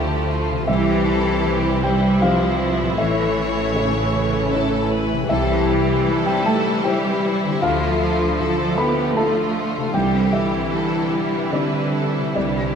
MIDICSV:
0, 0, Header, 1, 10, 480
1, 0, Start_track
1, 0, Key_signature, 0, "major"
1, 0, Tempo, 772201
1, 420, Time_signature, 3, 2, 24, 8
1, 6182, Tempo, 793651
1, 7142, Tempo, 829876
1, 7847, End_track
2, 0, Start_track
2, 0, Title_t, "Felt piano"
2, 0, Program_c, 0, 0
2, 0, Control_c, 0, 64, 127
2, 0, Note_on_c, 0, 38, 49
2, 0, Note_on_c, 0, 53, 41
2, 0, Note_on_c, 0, 69, 42
2, 0, Note_on_c, 0, 74, 57
2, 0, Note_on_c, 0, 76, 39
2, 0, Note_on_c, 0, 77, 71
2, 160, Note_off_c, 0, 74, 0
2, 230, Note_off_c, 0, 53, 0
2, 393, Note_off_c, 0, 38, 0
2, 394, Note_off_c, 0, 76, 0
2, 395, Note_off_c, 0, 69, 0
2, 419, Note_on_c, 0, 76, 72
2, 424, Note_on_c, 0, 36, 47
2, 432, Control_c, 0, 64, 0
2, 436, Note_off_c, 0, 77, 0
2, 540, Control_c, 0, 64, 127
2, 904, Note_on_c, 0, 55, 43
2, 1118, Note_off_c, 0, 76, 0
2, 1138, Note_on_c, 0, 79, 72
2, 1361, Note_off_c, 0, 79, 0
2, 1379, Note_on_c, 0, 77, 69
2, 1385, Note_on_c, 0, 60, 38
2, 1386, Note_on_c, 0, 72, 42
2, 1665, Note_off_c, 0, 55, 0
2, 1832, Note_off_c, 0, 77, 0
2, 1835, Note_off_c, 0, 36, 0
2, 1835, Note_off_c, 0, 60, 0
2, 1836, Note_off_c, 0, 72, 0
2, 1853, Note_on_c, 0, 76, 76
2, 1866, Note_on_c, 0, 33, 50
2, 1869, Control_c, 0, 64, 0
2, 1955, Control_c, 0, 64, 127
2, 2314, Note_off_c, 0, 76, 0
2, 2337, Note_on_c, 0, 73, 62
2, 2354, Note_on_c, 0, 57, 44
2, 2812, Note_off_c, 0, 73, 0
2, 2821, Note_on_c, 0, 64, 42
2, 2821, Note_on_c, 0, 73, 46
2, 3111, Note_off_c, 0, 57, 0
2, 3272, Note_off_c, 0, 64, 0
2, 3272, Note_off_c, 0, 73, 0
2, 3276, Note_off_c, 0, 33, 0
2, 3290, Note_on_c, 0, 76, 77
2, 3295, Note_on_c, 0, 36, 56
2, 3306, Control_c, 0, 64, 0
2, 3416, Control_c, 0, 64, 127
2, 3776, Note_on_c, 0, 55, 47
2, 3867, Note_off_c, 0, 76, 0
2, 3892, Note_on_c, 0, 79, 68
2, 4005, Note_off_c, 0, 79, 0
2, 4014, Note_on_c, 0, 81, 74
2, 4238, Note_off_c, 0, 81, 0
2, 4249, Note_on_c, 0, 79, 66
2, 4257, Note_on_c, 0, 64, 42
2, 4260, Note_on_c, 0, 72, 46
2, 4546, Note_off_c, 0, 55, 0
2, 4710, Note_off_c, 0, 79, 0
2, 4713, Note_off_c, 0, 36, 0
2, 4714, Note_off_c, 0, 64, 0
2, 4716, Note_off_c, 0, 72, 0
2, 4737, Note_on_c, 0, 77, 82
2, 4740, Note_on_c, 0, 38, 49
2, 4749, Control_c, 0, 64, 0
2, 4843, Control_c, 0, 64, 127
2, 5223, Note_on_c, 0, 53, 47
2, 5433, Note_off_c, 0, 77, 0
2, 5455, Note_on_c, 0, 83, 79
2, 5681, Note_off_c, 0, 83, 0
2, 5697, Note_on_c, 0, 81, 66
2, 5705, Note_on_c, 0, 76, 39
2, 5707, Note_on_c, 0, 69, 43
2, 5990, Note_off_c, 0, 53, 0
2, 6153, Note_off_c, 0, 81, 0
2, 6156, Note_off_c, 0, 38, 0
2, 6157, Note_off_c, 0, 76, 0
2, 6158, Note_off_c, 0, 69, 0
2, 6177, Note_on_c, 0, 79, 75
2, 6181, Note_on_c, 0, 36, 50
2, 6190, Control_c, 0, 64, 0
2, 6287, Control_c, 0, 64, 127
2, 6398, Note_off_c, 0, 79, 0
2, 6413, Note_on_c, 0, 76, 64
2, 6656, Note_on_c, 0, 55, 37
2, 7114, Note_off_c, 0, 76, 0
2, 7139, Note_on_c, 0, 74, 53
2, 7140, Note_on_c, 0, 64, 32
2, 7144, Note_on_c, 0, 60, 37
2, 7425, Note_off_c, 0, 55, 0
2, 7594, Note_off_c, 0, 64, 0
2, 7594, Note_off_c, 0, 74, 0
2, 7595, Note_off_c, 0, 36, 0
2, 7596, Note_off_c, 0, 60, 0
2, 7617, Note_on_c, 0, 74, 60
2, 7623, Note_on_c, 0, 36, 38
2, 7629, Control_c, 0, 64, 0
2, 7729, Control_c, 0, 64, 127
2, 7847, Note_off_c, 0, 36, 0
2, 7847, Note_off_c, 0, 74, 0
2, 7847, End_track
3, 0, Start_track
3, 0, Title_t, "French horn section"
3, 0, Program_c, 1, 60
3, 0, Note_on_c, 1, 53, 57
3, 0, Note_on_c, 1, 69, 57
3, 394, Note_off_c, 1, 69, 0
3, 395, Note_off_c, 1, 53, 0
3, 427, Note_on_c, 1, 67, 57
3, 432, Note_on_c, 1, 55, 55
3, 1754, Note_off_c, 1, 55, 0
3, 1754, Note_off_c, 1, 67, 0
3, 1860, Note_on_c, 1, 69, 56
3, 1862, Note_on_c, 1, 52, 61
3, 3273, Note_off_c, 1, 69, 0
3, 3289, Note_on_c, 1, 67, 65
3, 4716, Note_off_c, 1, 52, 0
3, 4735, Note_off_c, 1, 67, 0
3, 4741, Note_on_c, 1, 69, 61
3, 4742, Note_on_c, 1, 50, 63
3, 6075, Note_off_c, 1, 69, 0
3, 6180, Note_on_c, 1, 67, 55
3, 7596, Note_off_c, 1, 50, 0
3, 7615, Note_on_c, 1, 52, 41
3, 7847, Note_off_c, 1, 52, 0
3, 7847, Note_off_c, 1, 67, 0
3, 7847, End_track
4, 0, Start_track
4, 0, Title_t, "Violin section"
4, 0, Program_c, 2, 48
4, 0, Note_on_c, 2, 67, 55
4, 180, Note_off_c, 2, 67, 0
4, 182, Note_on_c, 2, 65, 51
4, 421, Note_off_c, 2, 65, 0
4, 425, Note_on_c, 2, 67, 59
4, 659, Note_off_c, 2, 67, 0
4, 663, Note_on_c, 2, 69, 57
4, 904, Note_off_c, 2, 69, 0
4, 912, Note_on_c, 2, 67, 54
4, 1146, Note_on_c, 2, 64, 54
4, 1147, Note_off_c, 2, 67, 0
4, 1845, Note_off_c, 2, 64, 0
4, 1857, Note_on_c, 2, 73, 66
4, 2816, Note_on_c, 2, 69, 58
4, 2819, Note_off_c, 2, 73, 0
4, 3055, Note_off_c, 2, 69, 0
4, 3055, Note_on_c, 2, 71, 63
4, 3295, Note_off_c, 2, 71, 0
4, 3296, Note_on_c, 2, 69, 61
4, 3531, Note_off_c, 2, 69, 0
4, 3539, Note_on_c, 2, 67, 58
4, 3777, Note_off_c, 2, 67, 0
4, 3780, Note_on_c, 2, 69, 60
4, 4258, Note_off_c, 2, 69, 0
4, 4263, Note_on_c, 2, 67, 62
4, 4499, Note_on_c, 2, 64, 56
4, 4501, Note_off_c, 2, 67, 0
4, 4739, Note_off_c, 2, 64, 0
4, 4741, Note_on_c, 2, 65, 64
4, 5220, Note_off_c, 2, 65, 0
4, 5220, Note_on_c, 2, 69, 56
4, 5455, Note_on_c, 2, 67, 52
4, 5460, Note_off_c, 2, 69, 0
4, 5694, Note_on_c, 2, 65, 55
4, 5698, Note_off_c, 2, 67, 0
4, 6167, Note_off_c, 2, 65, 0
4, 6183, Note_on_c, 2, 67, 56
4, 6654, Note_on_c, 2, 69, 51
4, 6656, Note_off_c, 2, 67, 0
4, 6895, Note_off_c, 2, 69, 0
4, 6901, Note_on_c, 2, 67, 46
4, 7141, Note_on_c, 2, 71, 54
4, 7142, Note_off_c, 2, 67, 0
4, 7377, Note_off_c, 2, 71, 0
4, 7381, Note_on_c, 2, 69, 43
4, 7620, Note_off_c, 2, 69, 0
4, 7620, Note_on_c, 2, 67, 44
4, 7847, Note_off_c, 2, 67, 0
4, 7847, End_track
5, 0, Start_track
5, 0, Title_t, "Clarinet"
5, 0, Program_c, 3, 71
5, 0, Note_on_c, 3, 62, 54
5, 179, Note_off_c, 3, 62, 0
5, 417, Note_on_c, 3, 64, 71
5, 1143, Note_on_c, 3, 67, 67
5, 1152, Note_off_c, 3, 64, 0
5, 1374, Note_off_c, 3, 67, 0
5, 1378, Note_on_c, 3, 65, 65
5, 1845, Note_off_c, 3, 65, 0
5, 1849, Note_on_c, 3, 64, 65
5, 2332, Note_on_c, 3, 61, 54
5, 2342, Note_off_c, 3, 64, 0
5, 3053, Note_off_c, 3, 61, 0
5, 3293, Note_on_c, 3, 64, 68
5, 3895, Note_on_c, 3, 67, 60
5, 3904, Note_off_c, 3, 64, 0
5, 4019, Note_on_c, 3, 69, 67
5, 4028, Note_off_c, 3, 67, 0
5, 4256, Note_off_c, 3, 69, 0
5, 4260, Note_on_c, 3, 67, 66
5, 4738, Note_on_c, 3, 65, 72
5, 4747, Note_off_c, 3, 67, 0
5, 5457, Note_on_c, 3, 71, 71
5, 5466, Note_off_c, 3, 65, 0
5, 5699, Note_on_c, 3, 69, 62
5, 5709, Note_off_c, 3, 71, 0
5, 6169, Note_off_c, 3, 69, 0
5, 6173, Note_on_c, 3, 67, 60
5, 6411, Note_on_c, 3, 64, 62
5, 6420, Note_off_c, 3, 67, 0
5, 7136, Note_on_c, 3, 62, 51
5, 7145, Note_off_c, 3, 64, 0
5, 7447, Note_off_c, 3, 62, 0
5, 7616, Note_on_c, 3, 62, 50
5, 7847, Note_off_c, 3, 62, 0
5, 7847, End_track
6, 0, Start_track
6, 0, Title_t, "Harp"
6, 0, Program_c, 4, 46
6, 0, Note_on_c, 4, 50, 50
6, 0, Note_on_c, 4, 53, 41
6, 0, Note_on_c, 4, 57, 39
6, 308, Note_on_c, 4, 48, 47
6, 338, Note_on_c, 4, 60, 41
6, 366, Note_on_c, 4, 67, 42
6, 382, Note_off_c, 4, 50, 0
6, 394, Note_on_c, 4, 72, 42
6, 396, Note_off_c, 4, 57, 0
6, 410, Note_off_c, 4, 53, 0
6, 1741, Note_on_c, 4, 45, 48
6, 1799, Note_on_c, 4, 69, 41
6, 1821, Note_off_c, 4, 48, 0
6, 1826, Note_on_c, 4, 73, 41
6, 1836, Note_off_c, 4, 60, 0
6, 1850, Note_off_c, 4, 67, 0
6, 1864, Note_off_c, 4, 72, 0
6, 3187, Note_on_c, 4, 48, 54
6, 3241, Note_on_c, 4, 67, 45
6, 3257, Note_off_c, 4, 45, 0
6, 3269, Note_on_c, 4, 72, 43
6, 3286, Note_off_c, 4, 69, 0
6, 3300, Note_off_c, 4, 73, 0
6, 4629, Note_on_c, 4, 50, 53
6, 4657, Note_on_c, 4, 62, 44
6, 4703, Note_off_c, 4, 48, 0
6, 4715, Note_on_c, 4, 69, 42
6, 4730, Note_off_c, 4, 67, 0
6, 4744, Note_off_c, 4, 72, 0
6, 6069, Note_on_c, 4, 48, 48
6, 6095, Note_on_c, 4, 64, 41
6, 6123, Note_on_c, 4, 67, 42
6, 6144, Note_off_c, 4, 50, 0
6, 6151, Note_on_c, 4, 60, 41
6, 6158, Note_off_c, 4, 62, 0
6, 6187, Note_off_c, 4, 69, 0
6, 7506, Note_off_c, 4, 48, 0
6, 7513, Note_on_c, 4, 48, 36
6, 7559, Note_off_c, 4, 67, 0
6, 7566, Note_on_c, 4, 67, 31
6, 7592, Note_on_c, 4, 72, 29
6, 7847, Note_off_c, 4, 48, 0
6, 7847, Note_off_c, 4, 60, 0
6, 7847, Note_off_c, 4, 64, 0
6, 7847, Note_off_c, 4, 67, 0
6, 7847, Note_off_c, 4, 72, 0
6, 7847, End_track
7, 0, Start_track
7, 0, Title_t, "Violin section"
7, 0, Program_c, 5, 48
7, 0, Note_on_c, 5, 57, 56
7, 0, Note_on_c, 5, 64, 62
7, 393, Note_off_c, 5, 64, 0
7, 395, Note_off_c, 5, 57, 0
7, 421, Note_on_c, 5, 60, 60
7, 423, Note_on_c, 5, 64, 54
7, 1859, Note_off_c, 5, 60, 0
7, 1863, Note_on_c, 5, 61, 60
7, 3273, Note_off_c, 5, 64, 0
7, 3274, Note_off_c, 5, 61, 0
7, 3303, Note_on_c, 5, 55, 57
7, 3303, Note_on_c, 5, 64, 64
7, 3412, Note_off_c, 5, 55, 0
7, 3419, Note_on_c, 5, 60, 52
7, 3536, Note_on_c, 5, 55, 57
7, 3538, Note_off_c, 5, 60, 0
7, 3653, Note_on_c, 5, 60, 49
7, 3656, Note_off_c, 5, 55, 0
7, 3772, Note_on_c, 5, 55, 55
7, 3774, Note_off_c, 5, 60, 0
7, 3893, Note_off_c, 5, 55, 0
7, 3898, Note_on_c, 5, 60, 55
7, 4014, Note_on_c, 5, 55, 51
7, 4016, Note_off_c, 5, 60, 0
7, 4135, Note_off_c, 5, 55, 0
7, 4138, Note_on_c, 5, 60, 51
7, 4257, Note_off_c, 5, 60, 0
7, 4257, Note_on_c, 5, 55, 59
7, 4377, Note_off_c, 5, 55, 0
7, 4381, Note_on_c, 5, 60, 54
7, 4499, Note_off_c, 5, 60, 0
7, 4502, Note_on_c, 5, 55, 54
7, 4620, Note_off_c, 5, 55, 0
7, 4628, Note_on_c, 5, 60, 54
7, 4743, Note_off_c, 5, 60, 0
7, 4747, Note_on_c, 5, 57, 59
7, 4855, Note_off_c, 5, 57, 0
7, 4868, Note_on_c, 5, 57, 53
7, 4984, Note_off_c, 5, 57, 0
7, 4990, Note_on_c, 5, 57, 52
7, 5101, Note_off_c, 5, 57, 0
7, 5108, Note_on_c, 5, 57, 51
7, 5221, Note_off_c, 5, 57, 0
7, 5228, Note_on_c, 5, 57, 59
7, 5343, Note_off_c, 5, 57, 0
7, 5351, Note_on_c, 5, 57, 52
7, 5465, Note_off_c, 5, 57, 0
7, 5473, Note_on_c, 5, 57, 50
7, 5584, Note_off_c, 5, 57, 0
7, 5591, Note_on_c, 5, 57, 49
7, 5706, Note_off_c, 5, 57, 0
7, 5715, Note_on_c, 5, 57, 52
7, 5825, Note_off_c, 5, 57, 0
7, 5832, Note_on_c, 5, 57, 50
7, 5941, Note_off_c, 5, 57, 0
7, 5949, Note_on_c, 5, 57, 48
7, 6064, Note_off_c, 5, 57, 0
7, 6070, Note_on_c, 5, 57, 49
7, 6158, Note_off_c, 5, 64, 0
7, 6185, Note_off_c, 5, 57, 0
7, 6190, Note_on_c, 5, 55, 54
7, 6190, Note_on_c, 5, 64, 60
7, 6294, Note_off_c, 5, 55, 0
7, 6305, Note_on_c, 5, 60, 48
7, 6419, Note_off_c, 5, 60, 0
7, 6425, Note_on_c, 5, 55, 48
7, 6539, Note_off_c, 5, 55, 0
7, 6542, Note_on_c, 5, 60, 44
7, 6658, Note_off_c, 5, 60, 0
7, 6663, Note_on_c, 5, 55, 45
7, 6779, Note_off_c, 5, 55, 0
7, 6787, Note_on_c, 5, 60, 43
7, 6902, Note_off_c, 5, 60, 0
7, 6904, Note_on_c, 5, 55, 41
7, 7021, Note_off_c, 5, 55, 0
7, 7021, Note_on_c, 5, 60, 39
7, 7141, Note_on_c, 5, 55, 44
7, 7142, Note_off_c, 5, 60, 0
7, 7257, Note_on_c, 5, 60, 39
7, 7258, Note_off_c, 5, 55, 0
7, 7376, Note_off_c, 5, 60, 0
7, 7381, Note_on_c, 5, 55, 38
7, 7498, Note_on_c, 5, 60, 39
7, 7499, Note_off_c, 5, 55, 0
7, 7617, Note_on_c, 5, 55, 39
7, 7618, Note_off_c, 5, 60, 0
7, 7730, Note_off_c, 5, 55, 0
7, 7739, Note_on_c, 5, 60, 36
7, 7847, Note_off_c, 5, 60, 0
7, 7847, Note_off_c, 5, 64, 0
7, 7847, End_track
8, 0, Start_track
8, 0, Title_t, "Cello section"
8, 0, Program_c, 6, 48
8, 0, Note_on_c, 6, 50, 56
8, 179, Note_off_c, 6, 50, 0
8, 423, Note_on_c, 6, 52, 70
8, 1120, Note_off_c, 6, 52, 0
8, 1146, Note_on_c, 6, 55, 63
8, 1381, Note_on_c, 6, 53, 70
8, 1382, Note_off_c, 6, 55, 0
8, 1858, Note_off_c, 6, 53, 0
8, 1864, Note_on_c, 6, 52, 66
8, 2335, Note_off_c, 6, 52, 0
8, 2343, Note_on_c, 6, 49, 57
8, 3058, Note_off_c, 6, 49, 0
8, 3298, Note_on_c, 6, 52, 68
8, 3871, Note_off_c, 6, 52, 0
8, 3895, Note_on_c, 6, 55, 71
8, 4010, Note_on_c, 6, 57, 72
8, 4015, Note_off_c, 6, 55, 0
8, 4253, Note_off_c, 6, 57, 0
8, 4256, Note_on_c, 6, 55, 69
8, 4729, Note_off_c, 6, 55, 0
8, 4742, Note_on_c, 6, 53, 72
8, 5446, Note_off_c, 6, 53, 0
8, 5457, Note_on_c, 6, 59, 65
8, 5699, Note_off_c, 6, 59, 0
8, 5699, Note_on_c, 6, 57, 61
8, 6178, Note_on_c, 6, 55, 62
8, 6179, Note_off_c, 6, 57, 0
8, 6410, Note_off_c, 6, 55, 0
8, 6411, Note_on_c, 6, 52, 60
8, 7136, Note_on_c, 6, 50, 53
8, 7138, Note_off_c, 6, 52, 0
8, 7608, Note_off_c, 6, 50, 0
8, 7615, Note_on_c, 6, 50, 47
8, 7847, Note_off_c, 6, 50, 0
8, 7847, End_track
9, 0, Start_track
9, 0, Title_t, "Viola section"
9, 0, Program_c, 7, 48
9, 0, Note_on_c, 7, 53, 56
9, 398, Note_off_c, 7, 53, 0
9, 424, Note_on_c, 7, 52, 55
9, 424, Note_on_c, 7, 55, 58
9, 1835, Note_off_c, 7, 55, 0
9, 1862, Note_on_c, 7, 57, 57
9, 3274, Note_off_c, 7, 52, 0
9, 3274, Note_off_c, 7, 57, 0
9, 3292, Note_on_c, 7, 55, 59
9, 3297, Note_on_c, 7, 52, 60
9, 4711, Note_off_c, 7, 55, 0
9, 4714, Note_off_c, 7, 52, 0
9, 4737, Note_on_c, 7, 50, 59
9, 4738, Note_on_c, 7, 53, 56
9, 6154, Note_off_c, 7, 50, 0
9, 6177, Note_on_c, 7, 52, 54
9, 6178, Note_on_c, 7, 55, 56
9, 6179, Note_off_c, 7, 53, 0
9, 7847, Note_off_c, 7, 52, 0
9, 7847, Note_off_c, 7, 55, 0
9, 7847, End_track
10, 0, Start_track
10, 0, Title_t, "Double bass section"
10, 0, Program_c, 8, 48
10, 0, Note_on_c, 8, 38, 58
10, 395, Note_off_c, 8, 38, 0
10, 421, Note_on_c, 8, 36, 58
10, 1833, Note_off_c, 8, 36, 0
10, 1859, Note_on_c, 8, 33, 64
10, 3272, Note_off_c, 8, 33, 0
10, 3298, Note_on_c, 8, 36, 65
10, 3696, Note_off_c, 8, 36, 0
10, 4741, Note_on_c, 8, 38, 64
10, 5140, Note_off_c, 8, 38, 0
10, 6180, Note_on_c, 8, 36, 62
10, 6575, Note_off_c, 8, 36, 0
10, 7616, Note_on_c, 8, 36, 48
10, 7847, Note_off_c, 8, 36, 0
10, 7847, End_track
0, 0, End_of_file